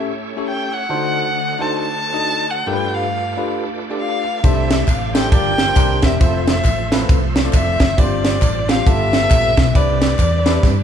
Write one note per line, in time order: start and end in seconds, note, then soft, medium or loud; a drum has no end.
0.00 0.87 A3 medium
0.00 0.10 C#4 medium
0.00 0.87 C#4 medium
0.00 0.10 E4 medium
0.00 0.87 E4 medium
0.00 0.11 G4 medium
0.00 0.86 G4 medium
0.00 0.11 A4 medium
0.00 0.11 C#5 medium
0.00 0.87 C#5 medium
0.37 0.68 C#4 medium
0.37 0.68 E4 medium
0.37 0.68 G4 medium
0.37 0.68 A4 medium
0.37 0.69 C#5 medium
0.47 0.75 G5 loud
0.73 1.63 F#5 loud
0.89 1.57 D3 medium
0.89 2.64 D3 medium
0.89 2.64 A3 medium
0.89 1.27 D4 medium
0.89 1.27 D#4 medium
0.89 0.97 F4 medium
0.89 1.27 F#4 medium
0.89 1.27 A4 medium
0.89 1.27 C5 medium
0.89 2.64 C5 medium
0.89 2.64 D#5 medium
0.96 2.66 F#4 medium
1.59 1.87 D4 medium
1.59 1.87 D#4 medium
1.59 1.87 F#4 medium
1.59 1.87 A4 medium
1.59 1.87 C5 medium
1.59 1.79 A5 loud
1.79 2.52 A5 loud
2.13 2.44 D4 medium
2.13 2.44 D#4 medium
2.13 2.45 F#4 medium
2.13 2.45 A4 medium
2.13 2.45 D#5 medium
2.50 2.69 F#5 loud
2.66 3.34 G2 medium
2.66 4.41 A3 medium
2.66 3.04 D4 medium
2.66 4.40 D4 medium
2.66 3.04 F4 medium
2.66 4.41 F4 medium
2.66 3.04 G4 medium
2.66 4.41 G4 medium
2.66 3.04 A4 medium
2.66 2.74 A#4 medium
2.66 4.41 B4 medium
2.66 2.95 G5 loud
2.73 3.07 B4 medium
2.94 3.56 F5 medium
3.37 3.64 D4 medium
3.37 3.64 F4 medium
3.37 3.64 G4 medium
3.37 3.64 A4 medium
3.37 3.64 B4 medium
3.90 4.21 D4 medium
3.90 4.22 F4 medium
3.90 4.22 G4 medium
3.90 4.22 A4 medium
3.90 4.22 D5 medium
4.00 4.46 F5 loud
4.43 4.82 C2 loud
4.43 5.11 C3 medium
4.43 5.31 A3 medium
4.43 5.30 D4 medium
4.43 4.81 D4 medium
4.43 4.50 D#4 medium
4.43 5.31 E4 medium
4.43 5.30 G4 medium
4.43 4.81 G4 medium
4.43 4.81 A4 medium
4.43 4.50 B4 medium
4.43 4.81 C5 medium
4.43 4.90 E5 loud
4.43 kick loud
4.43 ride medium
4.43 tambourine medium
4.49 4.83 E4 medium
4.49 5.33 C5 medium
4.71 snare loud
4.71 ride medium
4.71 tambourine medium
4.88 5.34 A1 medium
4.88 5.15 F5 medium
4.88 kick medium
4.88 clap medium
4.88 ride medium
4.88 tambourine medium
5.14 5.31 D4 medium
5.14 5.32 E4 medium
5.14 5.32 G4 medium
5.14 5.33 A4 medium
5.14 5.33 C5 medium
5.14 5.32 G5 loud
5.14 snare loud
5.14 ride medium
5.14 tambourine medium
5.32 5.70 G1 loud
5.32 5.74 G2 medium
5.32 5.76 A#3 medium
5.32 5.62 D4 medium
5.32 5.76 D4 medium
5.32 5.63 F4 medium
5.32 5.77 F4 medium
5.32 5.75 G4 medium
5.32 5.63 G4 medium
5.32 5.63 A#4 medium
5.32 5.77 D5 medium
5.32 5.63 D5 loud
5.32 6.06 G5 loud
5.32 kick loud
5.32 ride medium
5.32 tambourine medium
5.58 snare loud
5.58 ride medium
5.58 tambourine medium
5.67 5.74 D4 medium
5.67 5.76 F4 medium
5.67 5.75 G4 medium
5.67 5.75 A#4 medium
5.67 5.76 C5 medium
5.76 5.99 C2 loud
5.76 6.18 C3 medium
5.76 6.21 A#3 medium
5.76 6.13 D4 medium
5.76 6.21 D4 medium
5.76 6.13 E4 medium
5.76 6.21 E4 medium
5.76 6.14 G4 medium
5.76 6.21 G4 medium
5.76 6.14 A#4 medium
5.76 6.21 C5 medium
5.76 6.14 C5 loud
5.76 kick loud
5.76 clap loud
5.76 ride medium
5.76 tambourine loud
6.02 6.18 E1 loud
6.02 6.20 E5 loud
6.02 kick loud
6.02 snare loud
6.02 ride medium
6.02 tambourine medium
6.20 6.59 F1 loud
6.20 7.95 F3 medium
6.20 7.95 A3 medium
6.20 6.57 C4 medium
6.20 7.95 C4 medium
6.20 6.58 E4 medium
6.20 6.58 F4 medium
6.20 6.27 G#4 medium
6.20 6.58 C5 loud
6.20 7.95 C5 medium
6.20 6.46 E5 medium
6.20 7.95 E5 medium
6.20 kick loud
6.20 ride medium
6.20 tambourine medium
6.26 6.61 A4 medium
6.47 7.06 E5 loud
6.47 snare loud
6.47 ride medium
6.47 tambourine medium
6.65 7.03 A1 loud
6.65 kick medium
6.65 clap medium
6.65 ride medium
6.65 tambourine medium
6.92 7.18 C4 medium
6.92 7.18 E4 medium
6.92 7.18 F4 medium
6.92 7.19 A4 medium
6.92 7.19 B4 loud
6.92 snare loud
6.92 ride medium
6.92 tambourine medium
7.09 7.47 C2 loud
7.09 kick loud
7.09 ride medium
7.09 tambourine medium
7.36 snare loud
7.36 ride medium
7.36 tambourine medium
7.43 7.75 C4 medium
7.43 7.75 E4 medium
7.43 7.75 F4 medium
7.43 7.76 A4 medium
7.43 7.76 D5 medium
7.53 7.76 F1 loud
7.53 8.00 E5 loud
7.53 kick loud
7.53 clap medium
7.53 ride medium
7.53 tambourine loud
7.80 7.95 F#1 loud
7.80 kick loud
7.80 snare loud
7.80 ride soft
7.80 tambourine medium
7.97 8.36 G1 loud
7.97 8.65 G2 medium
7.97 8.85 G3 medium
7.97 8.35 C4 medium
7.97 8.85 C4 medium
7.97 8.35 D4 medium
7.97 8.85 D4 medium
7.97 8.35 F4 medium
7.97 8.85 F4 medium
7.97 8.35 G4 medium
7.97 8.05 B4 medium
7.97 8.85 C5 medium
7.97 8.70 D5 loud
7.97 kick loud
7.97 ride medium
7.97 tambourine medium
8.04 8.38 C5 loud
8.25 snare loud
8.25 ride medium
8.25 tambourine medium
8.42 8.80 A1 loud
8.42 kick medium
8.42 clap medium
8.42 ride medium
8.42 tambourine medium
8.68 8.86 C4 medium
8.68 8.87 D4 medium
8.68 8.85 F4 medium
8.68 8.86 G4 medium
8.68 8.87 C5 medium
8.68 8.88 F5 loud
8.68 snare loud
8.68 ride medium
8.68 tambourine medium
8.86 9.24 G1 loud
8.86 9.53 G2 medium
8.86 9.74 G3 medium
8.86 9.16 B3 medium
8.86 9.73 B3 medium
8.86 9.16 E4 medium
8.86 9.73 E4 medium
8.86 9.73 F4 medium
8.86 9.17 F4 medium
8.86 9.17 G4 medium
8.86 9.73 A4 medium
8.86 9.17 A4 loud
8.86 9.77 E5 loud
8.86 kick loud
8.86 ride medium
8.86 tambourine medium
9.13 snare loud
9.13 ride medium
9.13 tambourine medium
9.22 9.53 B3 medium
9.22 9.53 E4 medium
9.22 9.53 F4 medium
9.22 9.53 G4 medium
9.22 9.53 A4 medium
9.31 9.53 A#1 medium
9.31 kick loud
9.31 clap loud
9.31 ride loud
9.31 tambourine loud
9.57 9.72 B1 loud
9.57 kick loud
9.57 snare loud
9.57 ride soft
9.57 tambourine medium
9.74 10.13 C2 loud
9.74 10.42 C3 medium
9.74 10.83 G3 medium
9.74 10.12 C4 medium
9.74 10.83 C4 medium
9.74 10.12 D4 medium
9.74 10.83 D4 medium
9.74 10.12 E4 medium
9.74 10.83 E4 medium
9.74 10.12 G4 medium
9.74 10.12 B4 loud
9.74 10.83 B4 medium
9.74 10.83 D5 loud
9.74 kick loud
9.74 ride medium
9.74 tambourine medium
10.02 snare loud
10.02 ride medium
10.02 tambourine medium
10.19 10.57 E2 medium
10.19 kick medium
10.19 clap medium
10.19 ride medium
10.19 tambourine medium
10.45 10.72 C4 medium
10.45 10.72 D4 medium
10.45 10.72 E4 medium
10.45 10.72 G4 medium
10.45 10.73 B4 loud
10.45 snare loud
10.45 ride medium
10.45 tambourine medium
10.63 10.83 G2 loud
10.63 kick loud
10.63 snare medium
10.63 tambourine medium